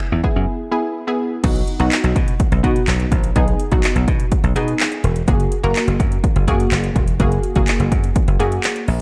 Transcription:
0.00 finger snap
0.12 E2
0.24 B3 E4 G#4, kick
0.36 F#2
0.71 B3 E4 G#4
1.07 B3 E4 G#4
1.44 B1 B3 D#4 F#4, kick, closed hi-hat, crash
1.56 closed hi-hat
1.68 closed hi-hat
1.79 B1 B3 D#4 F#4, closed hi-hat
1.92 clap, closed hi-hat
2.04 B1, closed hi-hat
2.16 B2, kick, closed hi-hat
2.28 closed hi-hat
2.40 kick, closed hi-hat
2.52 B1, closed hi-hat
2.63 B2 B3 D#4 F#4, kick, closed hi-hat
2.76 closed hi-hat
2.88 B1, clap, closed hi-hat
3.00 closed hi-hat
3.12 A#1, kick, closed hi-hat
3.24 closed hi-hat
3.36 B1 B3 D#4 G#4, kick, closed hi-hat
3.48 closed hi-hat
3.59 closed hi-hat
3.71 B1 B3 D#4 F#4, kick, closed hi-hat
3.84 clap, closed hi-hat
3.96 B1, closed hi-hat
4.08 B2, kick, closed hi-hat
4.20 closed hi-hat
4.32 kick, closed hi-hat
4.44 B1, closed hi-hat
4.56 B2 B3 D#4 G#4, closed hi-hat
4.68 closed hi-hat
4.80 clap, closed hi-hat
4.92 closed hi-hat
5.04 E1, closed hi-hat
5.16 closed hi-hat
5.28 F#1 A#3 F#4 G#4, kick, closed hi-hat
5.40 closed hi-hat
5.52 closed hi-hat
5.63 F#1 A#3 F#4 A#4, closed hi-hat
5.76 clap, closed hi-hat
5.87 F#1, closed hi-hat
6.00 F#2, kick, closed hi-hat
6.12 closed hi-hat
6.24 kick, closed hi-hat
6.36 F#1, closed hi-hat
6.47 F#2 A#3 F#4 G#4, kick, closed hi-hat
6.60 closed hi-hat
6.72 F#1, clap, closed hi-hat
6.84 closed hi-hat
6.96 E1, kick, closed hi-hat
7.08 closed hi-hat
7.20 F#1 A#3 F#4 G#4, kick, closed hi-hat
7.32 closed hi-hat
7.43 closed hi-hat
7.55 F#1 A#3 F#4 G#4, kick, closed hi-hat
7.68 clap, closed hi-hat
7.80 F#1, closed hi-hat
7.92 F#2, kick, closed hi-hat
8.04 closed hi-hat
8.16 kick, closed hi-hat
8.28 F#1, closed hi-hat
8.40 F#2 A#3 F#4 G#4, closed hi-hat
8.52 closed hi-hat
8.64 clap, closed hi-hat
8.76 closed hi-hat
8.88 A#1, open hi-hat

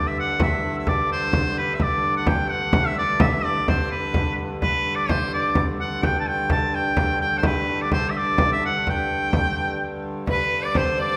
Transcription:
Already playing: G2 D3
0.07 E5
0.17 F#5, frame drum
0.40 E5, frame drum
0.78 E5
0.87 D5, frame drum
1.11 C5, frame drum
1.33 frame drum
1.57 B4, frame drum
1.74 E5
1.80 D5, frame drum
2.17 F#5
2.27 G5, frame drum
2.50 F#5, frame drum
2.73 frame drum
2.87 E5
2.97 D5, frame drum
3.20 E5, frame drum
3.44 D5, frame drum
3.68 C5, frame drum
3.91 B4, frame drum
4.14 frame drum
4.39 frame drum
4.61 G2 D3 B4, frame drum
4.96 D5
5.09 C5, frame drum
5.33 D5, frame drum
5.55 frame drum
5.80 F#5, frame drum
6.03 G5, frame drum
6.20 A5
6.28 G5
6.50 A5, frame drum
6.73 G5, frame drum
6.97 frame drum
7.21 G5, frame drum
7.38 C5
7.43 B4, frame drum
7.82 D5
7.92 C5, frame drum
8.10 E5
8.15 D5, frame drum
8.38 frame drum
8.52 E5
8.62 F#5, frame drum
8.87 G5, frame drum
9.33 frame drum
9.57 frame drum
10.04 frame drum
10.27 G2 D3 B4, frame drum
10.31 B4
10.62 D5
10.75 C5, frame drum
10.99 D5, frame drum

